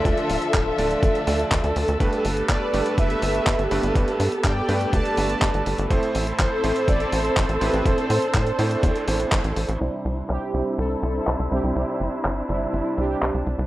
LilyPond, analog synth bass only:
\new Staff \with { instrumentName = "Analog synth bass" } { \clef bass \time 4/4 \key c \major \tempo 4 = 123 d,16 r16 d,,16 r16 d,,16 r16 d,,16 r16 a,,16 r16 d,16 r16 d,16 d,16 d,16 d,16 | g,,16 r16 g,,16 r16 g,,16 r16 g,,16 r16 g,,16 r16 g,,16 r16 g,,16 g,,16 g,,16 g,,16 | g,,16 r16 g,16 r16 g,16 r16 g,16 r16 d,16 r16 g,,16 r16 g,,16 g,,16 g,,16 g,,16 | a,,16 r16 a,,16 r16 a,,16 r16 a,,16 r16 a,,16 r16 a,,16 r16 a,,16 a,,16 a,,16 a,,16 |
a,,16 r16 a,16 r16 a,16 r16 a,16 r16 e,16 r16 a,,16 r16 a,,16 a,,16 a,,16 a,,16 | c,16 r16 c,16 r16 c,16 r16 c,16 r16 c,16 r16 c,16 r16 c,16 c,16 c,16 c,16 | c,16 r16 g,,16 r16 g,,16 r16 g,,16 r16 g,,16 r16 c,16 r16 c,16 c,16 c,16 c,16 | }